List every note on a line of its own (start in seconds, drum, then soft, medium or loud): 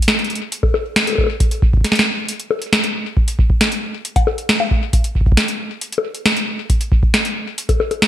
0.02 closed hi-hat medium
0.08 snare loud
0.19 closed hi-hat soft
0.24 closed hi-hat soft
0.30 closed hi-hat soft
0.35 closed hi-hat soft
0.52 closed hi-hat medium
0.63 kick medium
0.63 high bongo medium
0.74 high bongo medium
0.96 snare loud
0.96 closed hi-hat medium
1.07 closed hi-hat medium
1.07 high bongo soft
1.10 high bongo soft
1.13 high bongo soft
1.15 high bongo soft
1.18 kick medium
1.18 high bongo soft
1.21 high bongo soft
1.24 high bongo medium
1.27 high bongo medium
1.40 kick loud
1.40 closed hi-hat medium
1.51 closed hi-hat medium
1.62 kick loud
1.73 kick medium
1.77 kick medium
1.81 kick medium
1.81 snare medium
1.81 closed hi-hat medium
1.92 snare medium
1.92 closed hi-hat medium
1.99 snare loud
2.29 closed hi-hat medium
2.40 closed hi-hat medium
2.51 high bongo medium
2.62 closed hi-hat soft
2.73 snare loud
2.73 closed hi-hat medium
2.84 closed hi-hat medium
3.17 kick loud
3.28 closed hi-hat medium
3.39 kick loud
3.50 kick medium
3.61 snare loud
3.61 closed hi-hat medium
3.72 closed hi-hat soft
4.05 closed hi-hat medium
4.16 kick medium
4.16 closed hi-hat medium
4.16 high bongo soft
4.27 high bongo medium
4.38 closed hi-hat soft
4.49 snare loud
4.49 closed hi-hat medium
4.60 high bongo medium
4.71 kick medium
4.93 kick loud
4.93 closed hi-hat medium
5.04 closed hi-hat medium
5.15 kick medium
5.21 kick medium
5.26 kick medium
5.32 kick loud
5.37 snare loud
5.37 closed hi-hat medium
5.48 closed hi-hat medium
5.81 closed hi-hat medium
5.92 closed hi-hat medium
5.98 high bongo medium
6.15 closed hi-hat soft
6.26 snare loud
6.26 closed hi-hat medium
6.37 closed hi-hat soft
6.70 kick loud
6.70 closed hi-hat medium
6.81 closed hi-hat medium
6.92 kick loud
7.03 kick medium
7.14 snare loud
7.14 closed hi-hat medium
7.25 closed hi-hat soft
7.58 closed hi-hat medium
7.69 kick medium
7.69 closed hi-hat medium
7.69 high bongo medium
7.80 high bongo medium
7.91 closed hi-hat soft
7.91 high bongo medium
8.02 snare loud
8.02 closed hi-hat medium